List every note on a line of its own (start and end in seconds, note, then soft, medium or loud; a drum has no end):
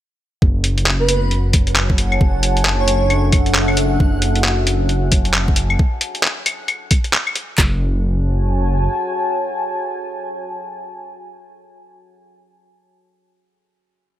0.41 2.19 F#1 medium
0.41 2.94 F#4 medium
0.41 5.79 F#5 medium
0.41 kick loud
0.64 closed hi-hat medium
0.73 2.93 C#5 medium
0.78 closed hi-hat soft
0.86 clap loud
1.00 1.07 B4 medium
1.08 1.32 B4 loud
1.08 closed hi-hat medium
1.17 2.93 G#5 medium
1.24 2.93 A5 medium
1.31 closed hi-hat soft
1.53 kick loud
1.53 closed hi-hat medium
1.67 closed hi-hat soft
1.76 clap loud
1.90 kick loud
1.98 closed hi-hat medium
2.12 claves medium
2.21 3.98 F#1 medium
2.21 4.00 D4 medium
2.21 kick loud
2.38 4.61 A4 medium
2.38 4.73 E5 medium
2.43 closed hi-hat medium
2.57 closed hi-hat soft
2.65 clap loud
2.79 3.24 C#5 medium
2.88 closed hi-hat medium
3.03 4.72 F#5 medium
3.10 closed hi-hat soft
3.10 claves medium
3.32 kick loud
3.32 closed hi-hat medium
3.32 claves soft
3.46 closed hi-hat soft
3.55 clap loud
3.68 claves medium
3.77 closed hi-hat medium
4.00 5.77 F#1 medium
4.00 5.79 F#4 medium
4.00 kick loud
4.22 closed hi-hat medium
4.36 closed hi-hat soft
4.44 clap loud
4.48 5.79 C#5 medium
4.67 closed hi-hat medium
4.89 closed hi-hat soft
5.12 kick loud
5.12 closed hi-hat medium
5.25 closed hi-hat soft
5.34 clap loud
5.48 kick loud
5.56 closed hi-hat medium
5.70 claves medium
5.79 kick loud
6.01 closed hi-hat medium
6.15 closed hi-hat soft
6.23 clap loud
6.46 closed hi-hat medium
6.46 claves medium
6.68 closed hi-hat soft
6.68 claves medium
6.91 kick loud
6.91 closed hi-hat medium
6.91 claves soft
7.04 closed hi-hat soft
7.13 clap loud
7.27 claves medium
7.36 closed hi-hat medium
7.58 8.88 F#1 medium
7.58 11.92 F#4 medium
7.58 kick loud
7.58 snare loud
7.58 clap medium
7.66 11.92 C#5 medium
7.73 11.92 G#5 medium
7.79 11.92 A5 medium